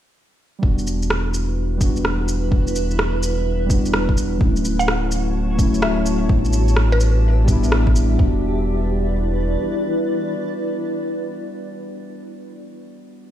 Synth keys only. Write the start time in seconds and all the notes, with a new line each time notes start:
0.59 G3 B3
0.64 D4 F#4
1.77 G3 B3
1.83 D4 F#4
2.48 G3 B3
2.53 D4 F#4
3.66 G3 B3
3.71 D4 F#4
4.36 F#3 A3
4.42 C#4 E4
5.55 F#3 A3
5.60 C#4 E4
6.25 G3 B3
6.31 D4 E4
7.44 G3 B3
7.50 D4 E4
8.13 G3
8.17 B3
8.21 D4 F#4